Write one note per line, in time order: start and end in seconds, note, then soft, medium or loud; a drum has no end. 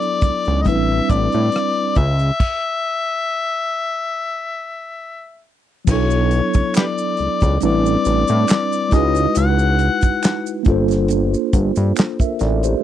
0.00 0.61 F#3 medium
0.00 0.62 B3 medium
0.00 0.63 D4 medium
0.00 0.64 E4 medium
0.00 0.65 A4 medium
0.00 0.63 D5 loud
0.00 closed hi-hat soft
0.21 0.32 C#2 soft
0.21 kick medium
0.21 closed hi-hat medium
0.45 0.68 C#2 medium
0.45 cross-stick soft
0.45 closed hi-hat soft
0.62 1.96 G3 medium
0.62 0.69 D#5 medium
0.62 closed hi-hat medium
0.66 1.01 A1 medium
0.66 0.73 B3 soft
0.66 1.97 D4 medium
0.66 1.97 E4 medium
0.66 1.98 B4 medium
0.66 1.12 E5 medium
0.66 kick medium
0.72 2.00 C4 medium
1.10 1.29 A1 medium
1.10 1.99 D5 loud
1.10 kick medium
1.10 closed hi-hat medium
1.32 1.50 A2 medium
1.32 closed hi-hat soft
1.52 cross-stick medium
1.52 closed hi-hat medium
1.95 2.31 C#2 loud
1.95 5.45 E5 loud
1.95 kick medium
1.95 closed hi-hat medium
2.19 closed hi-hat soft
2.40 kick loud
2.40 crash medium
5.85 6.41 B1 loud
5.85 7.57 F#3 medium
5.85 7.58 B3 medium
5.85 kick loud
5.85 crash medium
5.85 maracas medium
5.89 7.59 D4 medium
5.89 7.60 E4 medium
5.89 6.72 C#5 medium
5.93 7.61 A4 medium
6.10 maracas soft
6.31 closed hi-hat medium
6.53 6.63 C#2 soft
6.53 kick medium
6.53 closed hi-hat soft
6.53 maracas soft
6.74 6.84 G4 medium
6.74 6.85 B4 medium
6.74 7.58 D5 medium
6.74 finger snap medium
6.74 snare loud
6.74 clap medium
6.74 closed hi-hat medium
6.74 maracas medium
6.98 maracas soft
7.17 7.29 C#2 soft
7.17 closed hi-hat medium
7.40 7.58 C#2 medium
7.40 kick medium
7.40 closed hi-hat soft
7.40 maracas soft
7.60 7.97 A1 medium
7.60 8.92 G3 medium
7.60 8.92 C4 medium
7.60 8.93 D4 medium
7.60 8.92 E4 medium
7.60 8.95 D5 loud
7.60 closed hi-hat medium
7.60 maracas medium
7.65 8.94 B4 medium
7.85 closed hi-hat soft
7.85 maracas soft
8.05 8.24 A1 medium
8.05 closed hi-hat medium
8.05 maracas soft
8.28 8.45 A2 loud
8.28 closed hi-hat soft
8.28 maracas soft
8.47 finger snap medium
8.47 snare loud
8.47 clap medium
8.47 closed hi-hat medium
8.47 maracas medium
8.72 maracas soft
8.89 9.27 C#2 medium
8.89 10.61 G#3 medium
8.89 10.62 D#4 medium
8.89 10.63 E4 medium
8.89 kick loud
8.89 closed hi-hat medium
8.89 maracas soft
8.93 10.64 F#4 medium
8.93 10.65 B4 medium
8.93 9.36 D#5 medium
8.93 snare soft
9.15 closed hi-hat soft
9.15 maracas soft
9.35 9.89 C#2 medium
9.35 10.63 F#5 loud
9.35 closed hi-hat medium
9.35 maracas medium
9.59 maracas soft
9.79 closed hi-hat medium
10.01 10.11 G1 soft
10.01 kick medium
10.01 closed hi-hat soft
10.01 maracas soft
10.23 finger snap medium
10.23 snare loud
10.23 clap medium
10.23 closed hi-hat medium
10.23 maracas medium
10.46 maracas soft
10.63 11.36 G1 medium
10.63 12.78 A#3 medium
10.63 12.79 D4 medium
10.63 kick loud
10.63 closed hi-hat medium
10.67 12.80 F4 medium
10.67 11.53 A4 medium
10.67 11.54 C5 medium
10.88 snare soft
10.88 closed hi-hat soft
10.88 maracas soft
11.08 closed hi-hat medium
11.08 maracas medium
11.34 maracas soft
11.53 11.72 G1 medium
11.53 kick loud
11.53 closed hi-hat medium
11.53 maracas soft
11.76 11.93 G2 medium
11.76 closed hi-hat medium
11.76 maracas soft
11.96 finger snap medium
11.96 snare loud
11.96 clap loud
11.96 closed hi-hat medium
11.96 maracas medium
12.19 12.40 A#4 soft
12.19 12.39 E5 medium
12.19 kick medium
12.19 closed hi-hat soft
12.19 maracas soft
12.39 12.75 A1 loud
12.39 12.63 A4 medium
12.39 12.63 D5 medium
12.39 snare soft
12.39 closed hi-hat medium
12.39 maracas soft
12.63 12.83 G4 medium
12.63 12.83 C5 medium
12.63 closed hi-hat soft
12.63 maracas medium